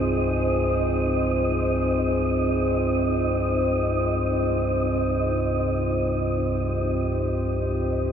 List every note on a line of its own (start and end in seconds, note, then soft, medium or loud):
0.00 8.12 C2 medium
0.00 8.12 G2 medium
0.00 8.12 C4 medium
0.00 8.12 D#4 medium
0.00 8.12 F4 medium
0.00 6.81 G#4 medium
0.00 8.12 C5 medium
0.00 8.12 D#5 medium
6.47 8.12 G4 medium